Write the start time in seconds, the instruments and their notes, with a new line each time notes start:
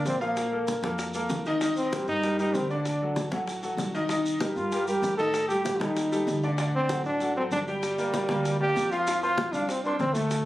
Already playing: grand piano A#3 A#4 D5
0.05 upright bass A#1, trombone C4, high bongo, low bongo, high conga, maracas
0.21 grand piano F3 F4 F5, trombone A#3, high bongo, high conga, maracas
0.37 high bongo, high conga, maracas
0.52 grand piano A#3 A4 A#4, high conga
0.68 high bongo, high conga, maracas
0.82 upright bass F2, grand piano A#3 A4 A#4, high bongo, high conga, maracas
0.99 high bongo, high conga, maracas
1.14 grand piano A#3 A4 A#4, high bongo, high conga, maracas
1.29 upright bass C2, high bongo, low bongo, high conga, maracas
1.46 grand piano D#3 D#4 D#5, high bongo, high conga, maracas
1.61 grand piano D#3 D#4 D#5, high bongo, high conga, maracas
1.77 trombone C4, high conga, maracas
1.93 grand piano G3 G4 A#4, high bongo, high conga, maracas
2.08 upright bass G2, trombone D#4, high bongo, high conga, maracas
2.23 grand piano G3 G4 A#4, high bongo, high conga, maracas
2.39 grand piano G3 G4 A#4, trombone D#4, high bongo, maracas
2.54 upright bass D2, trombone C4, high bongo, low bongo, high conga, maracas
2.70 grand piano D3 D4 D5, trombone D4, high bongo, high conga, maracas
2.86 high bongo, high conga, maracas
3.01 grand piano F#3 F#4 A4, high conga
3.16 high bongo, high conga, maracas
3.31 upright bass A1, grand piano F#3 F#4 A4, high bongo, high conga, maracas
3.47 high bongo, high conga, maracas
3.63 grand piano F#3 F#4 A4, high bongo, high conga, maracas
3.77 upright bass C2, high bongo, low bongo, high conga, maracas
3.94 grand piano D#3 D#4 D#5, high bongo, high conga, maracas
4.09 grand piano D#3 D#4 D#5, high bongo, high conga, maracas
4.25 high conga, maracas
4.40 grand piano G3 G4 A#4, trombone D#4, high bongo, high conga, maracas
4.56 upright bass G2, trombone F4, high bongo, high conga, maracas
4.72 grand piano G3 G4 A#4, high bongo, high conga, maracas
4.86 grand piano G3 G4 A#4, trombone G4, high bongo, high conga, maracas
5.02 upright bass A2, high bongo, low bongo, high conga, maracas
5.17 grand piano D#3 D#4 D#5, trombone A4, high bongo, high conga, maracas
5.34 high bongo, high conga, maracas
5.49 grand piano G3 G4 A4, trombone G4, high conga, maracas
5.65 high bongo, high conga, maracas
5.79 upright bass D#2, grand piano G3 G4 A4, trombone D#4, high bongo, high conga, maracas
5.97 high bongo, high conga, maracas
6.12 grand piano G3 G4 A4, high bongo, high conga, maracas
6.27 upright bass D2, high bongo, low bongo, high conga, maracas
6.43 grand piano D3 D4 D5, high bongo, high conga, maracas
6.58 grand piano D3 D4 D5, high bongo, high conga, maracas
6.74 trombone C4, high conga
6.89 grand piano F#3 F#4 A4, high bongo, high conga, maracas
7.04 upright bass A1, trombone D4, high bongo, high conga, maracas
7.20 grand piano F#3 F#4 A4, high bongo, high conga, maracas
7.36 grand piano F#3 F#4 A4, trombone C4, high bongo, high conga
7.51 upright bass G1, trombone D4, high bongo, low bongo, high conga, maracas
7.67 trombone G3, grand piano G3 G4 G5, high bongo, high conga, maracas
7.83 high bongo, high conga, maracas
7.98 grand piano A#3 A#4 D5, high conga, maracas
8.14 high bongo, high conga, maracas
8.29 upright bass D2, grand piano A#3 A#4 D5, high bongo, high conga, maracas
8.45 high bongo, high conga, maracas
8.60 grand piano A#3 A#4 D5, trombone G4, high bongo, high conga
8.76 upright bass F2, high bongo, low bongo, high conga, maracas
8.91 grand piano F3 F4 F5, trombone F4, high bongo, high conga, maracas
9.07 grand piano F3 F4 F5, high bongo, high conga, maracas
9.22 grand piano C4 C5 C6, trombone F4, high bongo, high conga, maracas
9.38 high bongo, high conga, maracas
9.52 upright bass C2, trombone D4, grand piano F4 F5 F6, high conga, maracas
9.69 trombone C4, high bongo, high conga, maracas
9.84 grand piano C4 C5 C6, trombone D4, high bongo, high conga, maracas
9.99 upright bass D2, trombone C4, high bongo, low bongo, high conga, maracas
10.13 trombone A3, grand piano A3 A4 A5, high bongo, high conga, maracas
10.31 high bongo, high conga, maracas